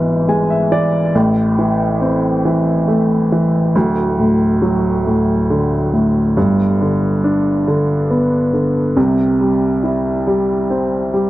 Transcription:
Already playing: G#1 G#2 E3 B3
0.28 G#3 G#5
0.50 E5
0.72 E3 D5
1.15 A1 A2
1.59 E3
2.01 C4
2.45 E3
2.88 A3
3.32 E3
3.75 D1 D2
4.19 A2
4.62 F#3
5.07 A2
5.50 D3
5.93 A2
6.37 G1 G2
6.81 D3
7.24 D4
7.68 D3
8.10 B3
8.53 D3
8.96 C2 C3
9.41 G3
9.83 E4
10.27 G3
10.70 C4
11.14 G3

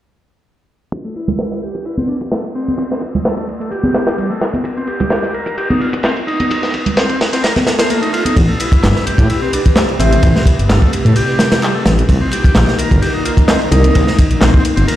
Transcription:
0.92 kick, closed hi-hat, ride
1.05 A3, closed hi-hat
1.15 E4, ride
1.28 kick, closed hi-hat, low conga
1.39 snare, closed hi-hat, ride
1.51 snare, closed hi-hat
1.62 G4, ride
1.75 kick, closed hi-hat
1.85 E4, closed hi-hat, ride
1.98 C4, closed hi-hat, high conga
2.08 D4, ride
2.21 kick, closed hi-hat
2.32 A3, snare, closed hi-hat, ride
2.45 closed hi-hat, ride
2.55 C4, ride
2.68 closed hi-hat, high conga
2.78 kick, closed hi-hat, ride
2.91 C4, snare, closed hi-hat
3.01 kick, ride
3.15 closed hi-hat, low conga
3.25 A3, snare, closed hi-hat, ride
3.37 A3, kick, closed hi-hat
3.49 ride
3.60 A3, closed hi-hat
3.71 G4, closed hi-hat, ride
3.84 closed hi-hat, high conga
3.94 snare, ride
4.07 snare, closed hi-hat, ride
4.18 G3, closed hi-hat, ride
4.30 A3, closed hi-hat
4.41 A3, snare, ride
4.54 closed hi-hat, high conga
4.64 kick, closed hi-hat, ride
4.77 C4, closed hi-hat
4.87 G4, ride
5.00 kick, closed hi-hat, low conga
5.10 snare, closed hi-hat, ride
5.22 snare, closed hi-hat
5.34 A#4, ride
5.46 kick, closed hi-hat
5.57 G4, closed hi-hat, ride
5.70 D#4, closed hi-hat, high conga
5.81 F4, ride
5.93 kick, closed hi-hat
6.03 C4, snare, closed hi-hat, ride
6.16 closed hi-hat, ride
6.27 D#4, ride
6.40 closed hi-hat, high conga
6.51 kick, closed hi-hat, ride
6.63 D#4, snare, closed hi-hat
6.74 kick, ride
6.86 closed hi-hat, low conga
6.97 C4, snare, closed hi-hat, ride
7.09 C4, kick, closed hi-hat
7.21 snare, ride
7.33 C4, snare, closed hi-hat
7.43 A#4, snare, closed hi-hat, ride, swell
7.56 snare, closed hi-hat, high conga
7.67 snare, ride
7.79 C5, snare, closed hi-hat, ride
7.90 A#3, closed hi-hat, ride
8.02 D#4, closed hi-hat
8.13 F4, ride
8.25 D#4, closed hi-hat, high conga
8.36 A1 C3 G4 B4, kick, closed hi-hat, ride
8.49 A3
8.60 E4, closed hi-hat, ride
8.72 kick, closed hi-hat
8.83 G1, snare, clap, closed hi-hat, ride
8.96 snare
9.06 G4, closed hi-hat, ride
9.18 A2, kick, closed hi-hat
9.30 E4, closed hi-hat, ride
9.42 C4
9.53 D4, closed hi-hat, ride
9.66 kick, closed hi-hat
9.76 A3 C5, snare, clap, closed hi-hat, ride
9.89 ride
9.99 A1 C4 E5, closed hi-hat, ride
10.13 closed hi-hat
10.23 A1, kick, closed hi-hat, ride
10.35 C4, snare
10.46 kick, closed hi-hat, ride
10.59 G1, closed hi-hat
10.69 G1 A3, snare, clap, closed hi-hat, ride
10.82 A3, kick
10.93 closed hi-hat, ride
11.05 A2 A3, closed hi-hat
11.16 G4, closed hi-hat, ride
11.39 snare, closed hi-hat, ride
11.52 snare, closed hi-hat, ride
11.62 G3, clap, closed hi-hat, ride
11.74 A3
11.86 A1 A3, snare, closed hi-hat, ride
11.99 closed hi-hat
12.09 C2 D#3 A#3 D#4, kick, closed hi-hat, ride
12.21 C4
12.31 G4, closed hi-hat, ride
12.44 kick, closed hi-hat
12.55 A#1, snare, clap, closed hi-hat, ride
12.68 snare
12.78 A#4, closed hi-hat, ride
12.91 G1, kick, closed hi-hat
13.02 G4, closed hi-hat, ride
13.14 D#4
13.25 F4, closed hi-hat, ride
13.37 kick, closed hi-hat
13.48 C4 D#5, snare, clap, closed hi-hat, ride
13.62 ride
13.71 C2 D#4 A#4, closed hi-hat, ride
13.84 closed hi-hat
13.95 C2, kick, closed hi-hat, ride
14.07 D#4, snare
14.18 kick, closed hi-hat, ride
14.30 A#1, closed hi-hat
14.41 A#1 C4, snare, clap, closed hi-hat, ride
14.53 C4, kick
14.65 closed hi-hat, ride
14.76 G1 C4, closed hi-hat
14.87 A#4, closed hi-hat, ride

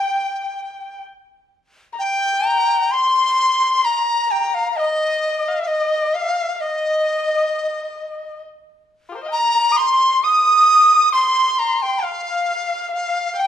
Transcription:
Already playing: G5
1.93 A#5
1.99 G5
2.47 A#5
2.91 C6
3.63 C6
3.85 A#5
4.31 G5
4.54 F5
4.71 F5
4.76 D#5
5.48 F5
5.63 F5
5.67 D#5
6.14 F5
6.55 F5
6.61 D#5
9.09 F4 G4
9.14 A#4 C5
9.22 D#5 F5
9.27 G5
9.32 A#5
9.72 D#6
9.76 C6
10.23 D#6
10.89 D#6
11.13 C6
11.59 A#5
11.82 G5
12.02 F5
12.91 F5
13.37 G5

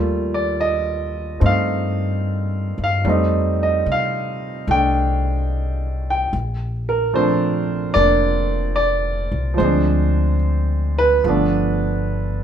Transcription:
Already playing: D#2 G3 A3 A#3 F4
0.34 D5
0.61 D#5
1.40 G2 A3 C4 D#4
1.46 F5
2.78 G2
2.84 F5
3.05 F2 G3 A3 C4
3.09 D#4
3.63 D#5
3.86 C3
3.92 F5
4.67 C2 A3 G5
4.72 D4
6.10 G5
6.33 A#1
6.89 A#4
7.13 F3 A3 C4 D4 C5
7.94 F1 A#3 D5
7.98 D4
8.76 D5
9.32 C2
9.54 F3 G#3
9.58 D2 C4 C5
9.65 D4
10.98 B4
11.24 G1 F3 A3 B3
11.29 D4

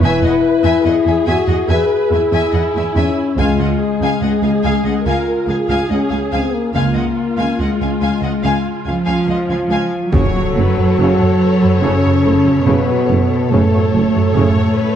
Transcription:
0.00 E1 E2 E4 B4 E5 G#5
0.22 E2 D#5 F#5
0.63 E2 E5 G#5
0.85 E2 G#4 D#5 F#5
1.06 E2 E5 G#5
1.26 E2 F#4 E5 G#5
1.48 E2 D#5 F#5
1.69 E2 G#4 B4 E5 G#5
2.11 E2 E4 E5 G#5
2.32 E2 E5 G#5
2.53 E2 D#5 F#5
2.75 E2 E5 G#5
2.95 E2 C#4 E5 G#5
3.37 C#2 G#3 F4 F5 G#5
3.59 C#2 D#5 F#5
3.81 G#4
4.01 C#2 F5 G#5
4.22 C#2 G#4 D#5 F#5
4.42 C#2 F5 G#5
4.64 C#2 F5 G#5
4.85 C#2 D#5 F#5
5.06 C#2 F4 A#4 F5 G#5
5.48 C#2 G#4 F5 G#5
5.69 C#2 F5 G#5
5.90 C#2 C#4 D#5 F#5
6.10 C#2 F5 G#5
6.31 C#2 C4 F5 G#5
6.53 A#3
6.73 C#2 A#3 F4 F5 G#5
6.95 C#2 D#5 F#5
7.38 C#2 F5 G#5
7.59 C#2 G#3 D#5 F#5
7.81 C#2 F5 G#5
8.01 C#2 F5 G#5
8.23 C#2 D#5 F#5
8.43 C#2 F5 G#5
8.86 C#2 F3 F4 F5 G#5
9.05 C#2 F5 G#5
9.28 C#2 D#5 F#5
9.49 C#2 F5 G#5
9.70 C#2 F5 G#5
10.11 F#1 F#2 C#3 F#3 F#4 A4 C#5, taiko, impact
10.34 F#2 F#3
10.55 F#1 F#2 A3 B4
10.76 F#2 F#3
10.97 F#1 F#2 C#3 A4
11.20 F#2 F#3
11.40 B4
11.62 F#2 F#3
11.81 F#1 F#2 C#3 C#4 C#5
12.04 F#2 F#3
12.23 F#1 F#2 A3 A4
12.46 F#2 F#3
12.64 F#1 F#2 B2 C#3 B3 B4
12.88 F#2 F#3
13.07 F#1 F#2 A3 A4
13.50 F#1 F#2 A2 C#3 A3 A4 C#5
13.72 F#2 F#3
13.93 F#1 F#2 A3
14.14 F#2 F#3
14.34 F#1 F#2 C#3 C#5
14.56 F#2 F#3
14.74 B4

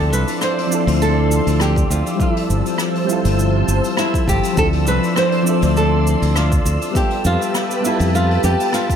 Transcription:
Already playing: D2 F3 C4 D4 E4 A4 D5 C6 E6
0.12 C2 B4, cabasa
0.28 open hi-hat, cabasa
0.41 C5, cross-stick, cabasa
0.58 open hi-hat
0.67 F3 C4 D4
0.72 E4 A4, cabasa
0.87 D2, open hi-hat, cabasa
1.02 A4, cabasa
1.31 cabasa
1.47 D2, open hi-hat, cabasa
1.60 G4, cross-stick, cabasa
1.76 kick, cabasa
1.90 D2 F4, cabasa
2.06 open hi-hat, cabasa
2.15 G3 C4
2.19 F3 E4 A4 C5 A5, kick, cabasa
2.37 open hi-hat
2.50 G1, cabasa
2.65 open hi-hat, cabasa
2.78 cross-stick, cabasa
2.95 open hi-hat
3.05 G3 C4
3.09 E4 F4 A4, cabasa
3.25 G1, open hi-hat, cabasa
3.39 cabasa
3.68 G1, cabasa
3.84 open hi-hat, cabasa
3.97 E4, cross-stick, cabasa
4.14 kick, cabasa
4.28 G1 G4, kick, cabasa
4.43 open hi-hat, cabasa
4.53 F3 C4, cabasa
4.57 D2 D4 E4 A4 D5 C6, kick
4.61 A4
4.73 open hi-hat
4.87 C2 B4, cabasa
5.03 open hi-hat, cabasa
5.16 C5, cross-stick, cabasa
5.32 open hi-hat
5.43 F3 C4 D4
5.47 A4 E5, cabasa
5.62 D2, open hi-hat, cabasa
5.77 A4, cabasa
6.07 cabasa
6.22 D2, open hi-hat, cabasa
6.36 F4, cross-stick, cabasa
6.52 kick, cabasa
6.65 D2, cabasa
6.81 open hi-hat, cabasa
6.91 G3 B3 E5
6.95 F4 G4 A4 B4 A5, kick, cabasa
7.10 open hi-hat
7.25 F2 F4, cabasa
7.41 open hi-hat, cabasa
7.55 cross-stick, cabasa
7.70 open hi-hat, cabasa
7.81 G3 B3 E5
7.85 E4 F4 A4, cabasa
7.99 F2, open hi-hat, cabasa
8.15 F4, cabasa
8.31 open hi-hat
8.43 F2 G4, cabasa
8.60 open hi-hat, cabasa
8.73 F4, cross-stick, cabasa
8.89 kick, open hi-hat, cabasa

